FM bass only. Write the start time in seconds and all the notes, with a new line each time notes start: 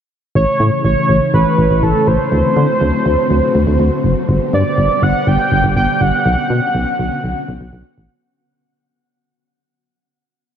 0.35 A1
0.60 A2
0.85 A1
1.09 A1
1.34 A1
1.58 A1
1.71 A1
1.83 A1
2.07 A1
2.32 D2
2.57 D3
2.81 D2
3.06 D2
3.30 D2
3.55 D2
3.67 D2
3.80 D2
4.04 F#1
4.29 G1
4.53 G2
4.78 G1
5.03 G1
5.27 G1
5.52 G1
5.64 G1
5.76 G1
6.01 G1
6.26 B1
6.50 B2
6.75 B1
6.99 B1
7.24 B1
7.48 B1
7.61 B1
7.73 B1
7.98 A1